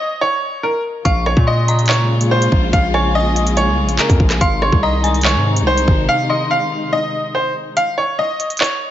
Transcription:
Already playing: D#5
0.21 C#5
0.63 A#4
1.05 A#1 C#3 G#3 A#3 F4 F5 C#6, kick, closed hi-hat
1.26 C#5, cross-stick
1.37 A#2, kick
1.47 D#5 C6
1.68 A#5, closed hi-hat
1.79 closed hi-hat
1.86 C#5, clap, closed hi-hat
1.93 closed hi-hat
2.21 closed hi-hat
2.31 C5
2.42 closed hi-hat
2.52 A#1, kick
2.73 A#1 F5, kick, closed hi-hat
2.94 C#5 G#5, cross-stick
3.15 D#5
3.36 closed hi-hat
3.47 closed hi-hat
3.57 C#5, closed hi-hat
3.68 C2
3.83 A#1
3.89 closed hi-hat
3.99 A#4, clap, closed hi-hat
4.10 F2, kick, closed hi-hat
4.20 A#1, kick
4.30 cross-stick, clap, closed hi-hat
4.41 G#1 C3 D#3 D#4 F5 C6, kick, closed hi-hat
4.62 C#5, cross-stick
4.72 C2, kick
4.83 D#5 A#5
5.04 G#5, closed hi-hat
5.14 closed hi-hat
5.21 C#5, clap, closed hi-hat
5.28 closed hi-hat
5.35 G#2
5.57 closed hi-hat
5.62 C2
5.67 C5
5.78 closed hi-hat
5.88 G#1, kick
6.09 F5
6.30 D#5 C6
6.51 F5
6.93 D#5
7.35 C5
7.77 F5, closed hi-hat
7.98 C#5
8.19 D#5
8.40 closed hi-hat
8.50 closed hi-hat
8.57 C#5, clap, closed hi-hat
8.64 closed hi-hat

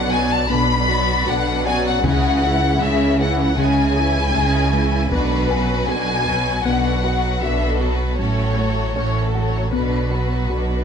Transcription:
Already playing: B1 B2 D3 D4 B4 D5 F#5 C#6
0.12 F#3 B3 F#4 D5 G#5
0.33 A5
0.50 B1 B2 D3 B3 D4 B4 B5
0.88 F#3 B3 F#4 D5
1.27 B1 B2 D3 D4 F#4 B4 F#5
1.65 F#3 B3 F#4 D5 F#5 G#5
1.86 F#5
2.04 C#2 C#3 G#3 C#4 E4 G#4 F#5, taiko
2.43 E3 C#4 E4
2.81 C#2 C#3 G#3 C#4 E4 G#4 E5
3.19 E3 C#4 E4 F#5
3.41 F#5
3.57 C#2 C#3 G#3 C#4 E4 G#4 G#5
3.96 E3 G#3 C#4 E4
4.34 C#2 C#3 G#3 C#4 E4 G#4
4.73 E3 G#3 C#4 E4
5.11 B1 B2 D3 B3 D4 F#4 B4, taiko
5.50 F#3 B3 F#4 B4 G#5
5.89 B1 B2 D3 D4 F#4 B4 G#5
6.27 F#3 B3 F#4 B4, taiko
6.65 B1 B2 D3 B3 D4 F#4 B4 F#5
7.04 F#3 B3 F#4 B4
7.42 B1 B2 D3 D4 F#4 B4 E5
7.69 A4
7.81 F#3 B3 F#4 B4
7.94 B4
8.19 A1 A2 F#3 A3 C#4 F#4 A4 C#5
8.58 F#3 A3 F#4 A4
8.96 A1 A2 A3 C#4 F#4 A4 C#5
9.22 A4
9.34 F#3 A3 F#4 A4 F#5
9.47 C#5
9.73 B1 B2 D3 B3 D4 F#4 B4
10.11 F#3 B3 F#4 B4
10.50 B1 B2 D3 D4 F#4 B4

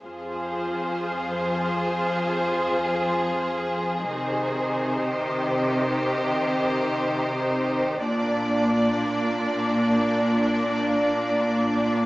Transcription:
0.03 F2 F3 F4 G#4 C5
4.05 C3 D#3 D#4 C5
5.04 G4
8.05 A#2 A#3 D4 D5

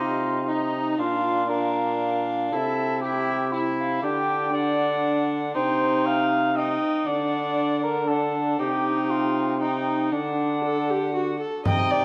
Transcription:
Already playing: C3 D#4 F4 D#5
0.47 D#4 D#5
0.98 A#2 D4 F4 F5
1.50 D4 A#4 F5
2.51 C3 E4 A4 F5
2.57 E5
3.01 E4 G4 E5
3.52 E4 E5
3.80 F5
4.02 D3 D4 G4 G5
4.53 D4 D5 F#5
5.54 C3 D#4 C5 G5
6.06 F5
6.56 D#4 D#5 G5
7.06 D3 D4 D5 F#5
7.83 A#4
8.08 D4 A4 F#5
8.59 C3 D#4 G4 G5
9.10 F4
9.60 D#4 G5
10.12 D3 D4 F#5
10.64 A4
10.90 G4
11.15 F#4
11.40 A4
11.65 C3 D#4 D#5 G5, frame drum
11.91 D5

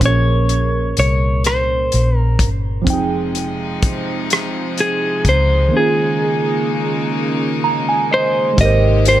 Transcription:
Already playing: A#2
0.00 A#1 A#3 C#4, kick, closed hi-hat
0.05 G#4 A#4 C#5
0.49 closed hi-hat
0.97 C2 C#5, closed hi-hat
1.44 C5, cross-stick, closed hi-hat
1.92 A#1, closed hi-hat
2.18 A#4
2.39 G1, kick, closed hi-hat
2.82 F3 C4
2.86 F1 C3 F3 G#3 D#4 G5, kick, closed hi-hat
2.93 G#4
3.35 closed hi-hat
3.82 kick, closed hi-hat
4.30 cross-stick, closed hi-hat
4.78 G#4, closed hi-hat
5.25 C#2, kick, closed hi-hat
5.29 C5
5.68 D#3 A#3
5.72 C#3 A#3 C#4 D#4
5.77 F4 G#4
7.64 A#5
7.89 G#5
8.11 C5 D#5
8.53 G#3 D#4
8.58 G#1 C3 G#3 A#3 G4 D#5, kick, closed hi-hat
8.63 A#4 C5
9.05 C5, closed hi-hat

